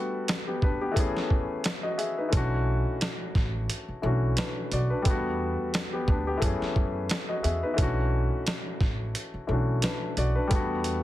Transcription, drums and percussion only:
0.28 snare, closed hi-hat
0.62 kick
0.96 kick, closed hi-hat
1.17 snare
1.30 kick
1.64 snare, closed hi-hat
1.99 closed hi-hat
2.33 kick, closed hi-hat
3.01 snare, closed hi-hat
3.35 kick, snare
3.70 closed hi-hat
4.37 snare, closed hi-hat
4.72 closed hi-hat
5.05 kick, closed hi-hat
5.74 snare, closed hi-hat
6.08 kick
6.42 kick, closed hi-hat
6.62 snare
6.76 kick
7.10 snare, closed hi-hat
7.44 closed hi-hat
7.78 kick, closed hi-hat
8.47 snare, closed hi-hat
8.81 kick, snare
9.15 closed hi-hat
9.82 snare, closed hi-hat
10.17 closed hi-hat
10.51 kick, closed hi-hat
10.84 closed hi-hat

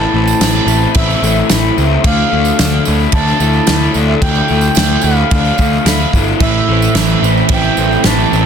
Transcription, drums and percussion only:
0.28 tambourine
0.41 snare, tambourine, crash
0.68 tambourine
0.82 tambourine
0.94 kick, tambourine, crash
1.10 tambourine
1.24 tambourine
1.37 tambourine
1.49 snare, tambourine, crash
1.78 tambourine
2.04 kick, tambourine, crash
2.45 tambourine
2.59 snare, tambourine, crash
2.85 tambourine
3.00 tambourine
3.12 kick, tambourine, crash
3.28 tambourine
3.40 tambourine
3.54 tambourine
3.67 snare, tambourine, crash
3.81 tambourine
3.94 tambourine
4.22 kick, tambourine, crash
4.35 tambourine
4.48 tambourine
4.61 tambourine
4.75 snare, tambourine, crash
4.89 tambourine
5.01 tambourine
5.17 tambourine
5.31 kick, tambourine, crash
5.45 tambourine
5.58 kick, tambourine
5.73 tambourine
5.86 snare, tambourine, crash
6.13 kick, tambourine
6.28 tambourine
6.40 kick, tambourine, crash
6.82 tambourine
6.95 snare, tambourine, crash
7.10 tambourine
7.24 tambourine
7.37 tambourine
7.49 kick, tambourine, crash
7.64 tambourine
7.77 tambourine
7.92 tambourine
8.04 snare, tambourine, crash
8.20 tambourine
8.33 tambourine

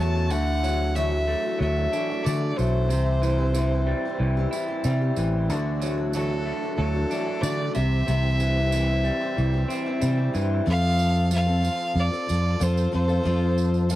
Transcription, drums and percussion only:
0.30 tambourine
0.64 tambourine
0.96 tambourine
1.93 tambourine
2.26 tambourine
2.59 tambourine
2.90 tambourine
3.23 tambourine
3.54 tambourine
4.53 tambourine
4.84 tambourine
5.16 tambourine
5.50 tambourine
5.82 tambourine
6.13 tambourine
7.11 tambourine
7.43 tambourine
7.75 tambourine
8.08 tambourine
8.40 tambourine
8.72 tambourine
9.05 tambourine
9.38 tambourine
9.70 tambourine
10.02 tambourine
10.35 tambourine
10.67 tambourine
10.99 tambourine
11.15 tambourine
11.31 tambourine
11.65 tambourine
11.80 tambourine
11.98 tambourine
12.14 tambourine
12.29 tambourine
12.61 tambourine
12.77 tambourine
12.93 tambourine
13.09 tambourine
13.26 tambourine
13.58 tambourine
13.74 tambourine
13.90 tambourine

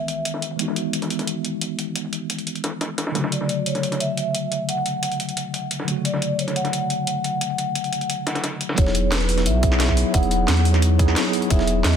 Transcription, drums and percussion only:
0.08 closed hi-hat
0.25 closed hi-hat
0.34 snare
0.42 closed hi-hat
0.51 closed hi-hat
0.59 closed hi-hat
0.68 snare
0.76 closed hi-hat
0.93 closed hi-hat
1.02 snare, closed hi-hat
1.10 closed hi-hat
1.19 snare, closed hi-hat
1.27 closed hi-hat
1.45 closed hi-hat
1.61 closed hi-hat
1.79 closed hi-hat
1.96 closed hi-hat
2.04 closed hi-hat
2.13 closed hi-hat
2.30 closed hi-hat
2.38 closed hi-hat
2.47 closed hi-hat
2.55 closed hi-hat
2.64 snare, closed hi-hat
2.81 snare, closed hi-hat
2.98 snare, closed hi-hat
3.07 snare, closed hi-hat
3.15 snare, closed hi-hat
3.24 snare, closed hi-hat
3.32 closed hi-hat
3.41 snare
3.49 closed hi-hat
3.66 closed hi-hat
3.75 snare, closed hi-hat
3.83 closed hi-hat
3.92 snare, closed hi-hat
4.00 closed hi-hat
4.17 closed hi-hat
4.34 closed hi-hat
4.51 closed hi-hat
4.69 closed hi-hat
4.77 closed hi-hat
4.86 closed hi-hat
5.03 closed hi-hat
5.12 closed hi-hat
5.20 closed hi-hat
5.29 closed hi-hat
5.37 closed hi-hat
5.54 closed hi-hat
5.71 closed hi-hat
5.80 snare
5.88 closed hi-hat
5.96 closed hi-hat
6.05 closed hi-hat
6.14 snare
6.22 closed hi-hat
6.39 closed hi-hat
6.48 snare, closed hi-hat
6.56 closed hi-hat
6.65 snare, closed hi-hat
6.73 closed hi-hat
6.90 closed hi-hat
7.07 closed hi-hat
7.24 closed hi-hat
7.41 closed hi-hat
7.50 closed hi-hat
7.58 closed hi-hat
7.75 closed hi-hat
7.84 closed hi-hat
7.93 closed hi-hat
8.01 closed hi-hat
8.10 closed hi-hat
8.27 snare, closed hi-hat
8.35 snare, closed hi-hat
8.44 snare, closed hi-hat
8.61 closed hi-hat
8.69 snare, closed hi-hat
8.78 kick, closed hi-hat
8.87 snare
8.95 closed hi-hat
9.12 snare, closed hi-hat
9.21 snare, closed hi-hat
9.29 closed hi-hat, open hi-hat
9.38 snare, closed hi-hat
9.46 closed hi-hat
9.63 kick, closed hi-hat
9.72 snare
9.80 snare, closed hi-hat
9.89 kick, snare
9.97 closed hi-hat, open hi-hat
10.14 kick, closed hi-hat
10.23 closed hi-hat
10.31 closed hi-hat
10.48 snare, closed hi-hat
10.57 closed hi-hat
10.65 closed hi-hat, open hi-hat
10.74 snare, closed hi-hat
10.82 closed hi-hat
10.99 kick, closed hi-hat
11.08 snare
11.16 snare, closed hi-hat
11.25 snare
11.33 closed hi-hat, open hi-hat
11.42 closed hi-hat
11.50 kick, closed hi-hat
11.59 snare
11.67 closed hi-hat
11.84 snare, closed hi-hat
11.93 snare, closed hi-hat

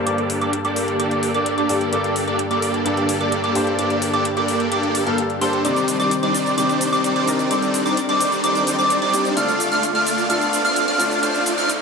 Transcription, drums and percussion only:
0.07 closed hi-hat
0.18 closed hi-hat
0.30 open hi-hat
0.41 closed hi-hat
0.53 closed hi-hat
0.65 closed hi-hat
0.76 open hi-hat
0.88 closed hi-hat
1.00 closed hi-hat
1.11 closed hi-hat
1.23 open hi-hat
1.34 closed hi-hat
1.46 closed hi-hat
1.58 closed hi-hat
1.69 open hi-hat
1.81 closed hi-hat
1.93 closed hi-hat
2.04 closed hi-hat
2.16 open hi-hat
2.28 closed hi-hat
2.39 closed hi-hat
2.51 closed hi-hat
2.62 open hi-hat
2.74 closed hi-hat
2.86 closed hi-hat
2.97 closed hi-hat
3.09 open hi-hat
3.21 closed hi-hat
3.32 closed hi-hat
3.44 closed hi-hat
3.55 open hi-hat
3.67 closed hi-hat
3.79 closed hi-hat
3.90 closed hi-hat
4.02 open hi-hat
4.14 closed hi-hat
4.25 closed hi-hat
4.37 closed hi-hat
4.48 open hi-hat
4.60 closed hi-hat
4.72 closed hi-hat
4.83 closed hi-hat
4.95 open hi-hat
5.07 closed hi-hat
5.18 closed hi-hat
5.30 closed hi-hat
5.41 open hi-hat
5.53 closed hi-hat
5.65 closed hi-hat, shaker
5.76 closed hi-hat, shaker
5.88 open hi-hat, shaker
6.00 closed hi-hat, shaker
6.11 closed hi-hat, shaker
6.23 closed hi-hat
6.35 open hi-hat, shaker
6.46 closed hi-hat, shaker
6.58 closed hi-hat, shaker
6.69 closed hi-hat, shaker
6.81 open hi-hat, shaker
6.93 closed hi-hat, shaker
7.04 closed hi-hat, shaker
7.16 closed hi-hat
7.28 open hi-hat, shaker
7.39 closed hi-hat, shaker
7.51 closed hi-hat, shaker
7.62 closed hi-hat, shaker
7.74 open hi-hat, shaker
7.86 closed hi-hat, shaker
7.97 closed hi-hat, shaker
8.09 closed hi-hat
8.21 open hi-hat, shaker
8.32 closed hi-hat, shaker
8.44 closed hi-hat, shaker
8.55 closed hi-hat, shaker
8.67 open hi-hat, shaker
8.79 closed hi-hat, shaker
8.90 closed hi-hat, shaker
9.02 closed hi-hat
9.13 open hi-hat, shaker
9.25 closed hi-hat, shaker
9.37 closed hi-hat, shaker
9.48 closed hi-hat, shaker
9.60 open hi-hat, shaker
9.72 closed hi-hat, shaker
9.83 closed hi-hat, shaker
9.95 closed hi-hat
10.07 open hi-hat, shaker
10.18 closed hi-hat, shaker
10.30 closed hi-hat, shaker
10.41 closed hi-hat, shaker
10.53 open hi-hat, shaker
10.65 closed hi-hat, shaker
10.76 closed hi-hat, shaker
10.88 closed hi-hat
11.00 open hi-hat, shaker
11.11 closed hi-hat, shaker
11.23 closed hi-hat, shaker
11.34 closed hi-hat, shaker
11.46 open hi-hat, shaker
11.58 closed hi-hat, shaker
11.69 closed hi-hat, shaker

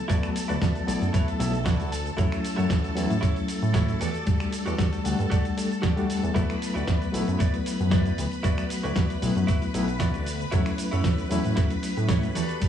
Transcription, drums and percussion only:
0.10 kick, closed hi-hat, cabasa
0.23 finger snap, closed hi-hat, cabasa
0.36 open hi-hat, cabasa
0.49 closed hi-hat, cabasa
0.62 kick, snare, closed hi-hat, cabasa
0.76 closed hi-hat, cabasa
0.88 open hi-hat, cabasa
1.02 closed hi-hat, cabasa
1.14 kick, closed hi-hat, cabasa
1.28 closed hi-hat, cabasa
1.40 open hi-hat, cabasa
1.54 closed hi-hat, cabasa
1.66 kick, snare, closed hi-hat, cabasa
1.80 closed hi-hat, cabasa
1.92 open hi-hat, cabasa
2.06 closed hi-hat, cabasa
2.18 kick, closed hi-hat, cabasa
2.32 finger snap, closed hi-hat, cabasa
2.45 open hi-hat, cabasa
2.58 closed hi-hat, cabasa
2.70 kick, snare, closed hi-hat, cabasa
2.84 closed hi-hat, cabasa
2.97 open hi-hat, cabasa
3.10 closed hi-hat, cabasa
3.23 kick, closed hi-hat, cabasa
3.36 closed hi-hat, cabasa
3.48 open hi-hat, cabasa
3.62 closed hi-hat, cabasa
3.74 kick, snare, closed hi-hat, cabasa
3.88 closed hi-hat, cabasa
4.01 open hi-hat, cabasa
4.14 closed hi-hat, cabasa
4.27 kick, closed hi-hat, cabasa
4.40 finger snap, closed hi-hat, cabasa
4.52 open hi-hat, cabasa
4.66 closed hi-hat, cabasa
4.78 kick, snare, closed hi-hat, cabasa
4.93 closed hi-hat, cabasa
5.05 open hi-hat, cabasa
5.19 closed hi-hat, cabasa
5.32 kick, closed hi-hat, cabasa
5.45 closed hi-hat, cabasa
5.58 open hi-hat, cabasa
5.71 closed hi-hat, cabasa
5.83 kick, snare, closed hi-hat, cabasa
5.97 closed hi-hat, cabasa
6.10 open hi-hat, cabasa
6.23 closed hi-hat, cabasa
6.36 kick, closed hi-hat, cabasa
6.50 finger snap, closed hi-hat, cabasa
6.62 open hi-hat, cabasa
6.76 closed hi-hat, cabasa
6.88 kick, snare, closed hi-hat, cabasa
7.02 closed hi-hat, cabasa
7.14 open hi-hat, cabasa
7.28 closed hi-hat, cabasa
7.40 kick, closed hi-hat, cabasa
7.54 closed hi-hat, cabasa
7.66 open hi-hat, cabasa
7.80 closed hi-hat, cabasa
7.91 kick, snare, closed hi-hat, cabasa
8.06 closed hi-hat, cabasa
8.18 open hi-hat, cabasa
8.32 closed hi-hat, cabasa
8.44 kick, closed hi-hat, cabasa
8.58 finger snap, closed hi-hat, cabasa
8.70 open hi-hat, cabasa
8.84 closed hi-hat, cabasa
8.96 kick, snare, closed hi-hat, cabasa
9.10 closed hi-hat, cabasa
9.22 open hi-hat, cabasa
9.36 closed hi-hat, cabasa
9.48 kick, closed hi-hat, cabasa
9.62 closed hi-hat, cabasa
9.74 open hi-hat, cabasa
9.88 closed hi-hat, cabasa
10.00 kick, snare, closed hi-hat, cabasa
10.14 closed hi-hat, cabasa
10.26 open hi-hat, cabasa
10.40 closed hi-hat, cabasa
10.52 kick, closed hi-hat, cabasa
10.66 finger snap, closed hi-hat, cabasa
10.78 open hi-hat, cabasa
10.92 closed hi-hat, cabasa
11.04 kick, snare, closed hi-hat, cabasa
11.18 closed hi-hat, cabasa
11.31 open hi-hat, cabasa
11.44 closed hi-hat, cabasa
11.57 kick, closed hi-hat, cabasa
11.71 closed hi-hat, cabasa
11.83 open hi-hat, cabasa
11.97 closed hi-hat, cabasa
12.09 kick, snare, closed hi-hat, cabasa
12.23 closed hi-hat, cabasa
12.35 open hi-hat, cabasa
12.49 closed hi-hat, cabasa
12.62 kick, closed hi-hat, cabasa

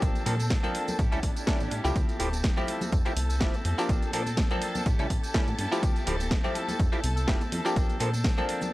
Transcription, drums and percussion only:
0.02 kick, closed hi-hat, tambourine, high conga, maracas
0.15 closed hi-hat, tambourine
0.26 open hi-hat, low conga, maracas
0.40 closed hi-hat, tambourine, high conga, maracas
0.50 kick, snare, closed hi-hat, maracas
0.64 closed hi-hat, tambourine, low conga
0.75 open hi-hat, maracas
0.88 closed hi-hat, tambourine, high conga, low conga, maracas
0.99 kick, closed hi-hat, tambourine, maracas
1.12 closed hi-hat, tambourine
1.23 kick, open hi-hat, high conga, maracas
1.36 closed hi-hat, tambourine, maracas
1.47 kick, snare, closed hi-hat, tambourine, maracas
1.60 closed hi-hat, tambourine, high conga
1.71 open hi-hat, maracas
1.85 closed hi-hat, tambourine, maracas
1.96 kick, closed hi-hat, tambourine, high conga, maracas
2.09 closed hi-hat, tambourine
2.20 open hi-hat, maracas
2.33 closed hi-hat, tambourine, high conga, maracas
2.44 kick, snare, closed hi-hat, tambourine, maracas
2.57 closed hi-hat, tambourine, low conga
2.68 open hi-hat, maracas
2.81 closed hi-hat, tambourine, high conga, low conga, maracas
2.92 kick, closed hi-hat, tambourine, maracas
3.06 closed hi-hat, tambourine
3.17 open hi-hat, high conga, maracas
3.30 closed hi-hat, tambourine, maracas
3.41 kick, snare, closed hi-hat, maracas
3.53 closed hi-hat, tambourine, high conga
3.65 open hi-hat, maracas
3.78 tambourine, maracas
3.89 kick, closed hi-hat, tambourine, high conga, maracas
4.02 closed hi-hat, tambourine
4.13 open hi-hat, maracas
4.26 closed hi-hat, tambourine, high conga, maracas
4.37 kick, snare, closed hi-hat, tambourine, maracas
4.51 closed hi-hat, tambourine, low conga
4.61 open hi-hat, maracas
4.75 closed hi-hat, tambourine, high conga, low conga, maracas
4.86 kick, closed hi-hat, tambourine, maracas
4.99 closed hi-hat, tambourine
5.10 kick, open hi-hat, high conga, maracas
5.23 closed hi-hat, tambourine, maracas
5.34 kick, snare, closed hi-hat, tambourine, maracas
5.48 closed hi-hat, tambourine, high conga
5.58 open hi-hat, maracas
5.72 tambourine, maracas
5.83 kick, closed hi-hat, tambourine, high conga, maracas
5.96 closed hi-hat, tambourine
6.07 open hi-hat, maracas
6.20 closed hi-hat, tambourine, high conga, maracas
6.31 kick, snare, closed hi-hat, tambourine, maracas
6.44 closed hi-hat, tambourine, low conga
6.55 open hi-hat, maracas
6.68 closed hi-hat, tambourine, high conga, low conga, maracas
6.79 kick, closed hi-hat, tambourine, maracas
6.93 closed hi-hat, tambourine
7.04 open hi-hat, high conga, maracas
7.17 closed hi-hat, tambourine, maracas
7.28 kick, snare, closed hi-hat, tambourine, maracas
7.41 closed hi-hat, tambourine, high conga
7.52 open hi-hat, maracas
7.65 tambourine, maracas
7.76 kick, closed hi-hat, tambourine, high conga, maracas
7.90 closed hi-hat, tambourine
8.00 open hi-hat, maracas
8.14 closed hi-hat, tambourine, high conga, maracas
8.24 kick, snare, closed hi-hat, tambourine, maracas
8.38 closed hi-hat, tambourine, low conga
8.49 open hi-hat, maracas
8.61 closed hi-hat, tambourine, high conga, low conga, maracas

